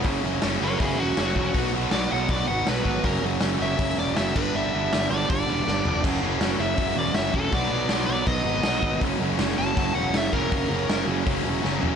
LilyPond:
<<
  \new Staff \with { instrumentName = "Overdriven electric guitar" } { \time 4/4 \key fis \mixolydian \tempo 4 = 161 r4. <ais' cis''>8 <e' gis'>8 fis'4.~ | fis'8 r8 d''8 fis''8 d''8 fis''8 b'4 | ais'8 r4 e''4 d''8 e''8 b'8 | e''4. d''8 d''2 |
r4. e''4 d''8 e''8 a'8 | d''4. d''8 dis''2 | r4. a''4 fis''8 e''8 ais'8~ | ais'4. r2 r8 | }
  \new Staff \with { instrumentName = "Distorted electric guitar" } { \clef bass \time 4/4 \key fis \mixolydian <fis, cis fis ais cis' fis'>8 <fis, cis fis ais cis' fis'>8 <fis, cis fis ais cis' fis'>8 <fis, cis fis ais cis' fis'>8 <fis, cis fis ais cis' fis'>8 <fis, cis fis ais cis' fis'>8 <fis, cis fis ais cis' fis'>8 <fis, cis fis ais cis' fis'>8 | <b, fis b dis' fis'>8 <b, fis b dis' fis'>8 <b, fis b dis' fis'>8 <b, fis b dis' fis'>8 <b, fis b dis' fis'>8 <b, fis b dis' fis'>8 <b, fis b dis' fis'>8 <b, fis b dis' fis'>8 | <fis, cis fis ais cis'>8 <fis, cis fis ais cis'>8 <fis, cis fis ais cis'>8 <fis, cis fis ais cis'>8 <fis, cis fis ais cis'>8 <fis, cis fis ais cis'>8 <fis, cis fis ais cis'>8 <g, d g b d'>8 | <g, d g b d'>8 <g, d g b d'>8 <g, d g b d'>8 <g, d g b d'>8 <g, d g b d'>8 <g, d g b d'>8 <g, d g b d'>8 <g, d g b d'>8 |
<fis, cis fis ais cis'>8 <fis, cis fis ais cis'>8 <fis, cis fis ais cis'>8 <fis, cis fis ais cis'>8 <fis, cis fis ais cis'>8 <fis, cis fis ais cis'>8 <fis, cis fis ais cis'>8 <fis, cis fis ais cis'>8 | <b, fis b dis'>8 <b, fis b dis'>8 <b, fis b dis'>8 <b, fis b dis'>8 <b, fis b dis'>8 <b, fis b dis'>8 <b, fis b dis'>8 <b, fis b dis'>8 | <fis, cis fis ais cis'>8 <fis, cis fis ais cis'>8 <fis, cis fis ais cis'>8 <fis, cis fis ais cis'>8 <fis, cis fis ais cis'>8 <fis, cis fis ais cis'>8 <fis, cis fis ais cis'>8 <fis, cis fis ais cis'>8 | <fis, cis fis ais cis'>8 <fis, cis fis ais cis'>8 <fis, cis fis ais cis'>8 <fis, cis fis ais cis'>8 <fis, cis fis ais cis'>8 <fis, cis fis ais cis'>8 <fis, cis fis ais cis'>8 <fis, cis fis ais cis'>8 | }
  \new Staff \with { instrumentName = "Distorted electric guitar" } { \clef bass \time 4/4 \key fis \mixolydian r1 | r1 | r1 | r1 |
<fis, cis fis>2.~ <fis, cis fis>8 <fis, cis fis>8 | <b, fis b>2.~ <b, fis b>8 <b, fis b>8 | <fis, cis fis>2.~ <fis, cis fis>8 <fis, cis fis>8 | <fis, cis fis>2.~ <fis, cis fis>8 <fis, cis fis>8 | }
  \new Staff \with { instrumentName = "Overdriven electric guitar" } { \clef bass \time 4/4 \key fis \mixolydian <fis, cis fis>8 <fis, cis fis>8 <fis, cis fis>8 <fis, cis fis>8 <fis, cis fis>8 <fis, cis fis>8 <fis, cis fis>8 <fis, cis fis>8 | <b, fis b>8 <b, fis b>8 <b, fis b>8 <b, fis b>8 <b, fis b>8 <b, fis b>8 <b, fis b>8 <b, fis b>8 | <fis, cis fis>8 <fis, cis fis>8 <fis, cis fis>8 <fis, cis fis>8 <fis, cis fis>8 <fis, cis fis>8 <fis, cis fis>8 <g, d g>8 | <g, d g>8 <g, d g>8 <g, d g>8 <g, d g>8 <g, d g>8 <g, d g>8 <g, d g>8 <g, d g>8 |
<fis, cis fis>8 <fis, cis fis>8 <fis, cis fis>8 <fis, cis fis>8 <fis, cis fis>8 <fis, cis fis>8 <fis, cis fis>8 <fis, cis fis>8 | <b, fis b>8 <b, fis b>8 <b, fis b>8 <b, fis b>8 <b, fis b>8 <b, fis b>8 <b, fis b>8 <b, fis b>8 | <fis, cis fis>8 <fis, cis fis>8 <fis, cis fis>8 <fis, cis fis>8 <fis, cis fis>8 <fis, cis fis>8 <fis, cis fis>8 <fis, cis fis>8 | <fis, cis fis>8 <fis, cis fis>8 <fis, cis fis>8 <fis, cis fis>8 <fis, cis fis>8 <fis, cis fis>8 <fis, cis fis>8 <fis, cis fis>8 | }
  \new Staff \with { instrumentName = "Picked electric bass" } { \clef bass \time 4/4 \key fis \mixolydian fis,,8 fis,,8 fis,,8 fis,,8 fis,,8 e,,8 fis,,8 e,,8 | b,,8 b,,8 b,,8 b,,8 b,,8 gis,,8 b,,8 gis,,8 | fis,,8 fis,,8 fis,,8 fis,,8 fis,,8 e,,8 fis,,8 g,,8 | g,,8 g,,8 g,,8 g,,8 g,,8 e,,8 g,,8 eis,,8 |
fis,,8 fis,,8 fis,,8 fis,,8 fis,,8 e,,8 fis,,8 e,,8 | b,,8 b,,8 b,,8 b,,8 b,,8 gis,,8 b,,8 gis,,8 | fis,,8 fis,,8 fis,,8 fis,,8 fis,,8 e,,8 fis,,8 e,,8 | fis,,8 fis,,8 fis,,8 fis,,8 fis,,8 e,,8 fis,,8 e,,8 | }
  \new DrumStaff \with { instrumentName = "Drums" } \drummode { \time 4/4 <hho bd>4 <hho sn>4 <hho bd>4 <hho sn>8 bd8 | <hho bd>4 <hho sn>4 <hho bd>4 <hho sn>8 bd8 | <hho bd>4 <hho sn>4 <hho bd>4 <hho sn>8 <cymc bd>8 | r4 <hho sn>4 <hho bd>4 sn8 tomfh8 |
<cymc bd>4 <hho sn>4 <hho bd>4 <hho sn>8 bd8 | <hho bd>4 <hho sn>4 <hho bd>4 <hho sn>8 bd8 | <hho bd>4 <hho sn>4 <hho bd>4 <hho sn>8 bd8 | <hho bd>4 <hho sn>4 <hho bd>4 sn8 tomfh8 | }
>>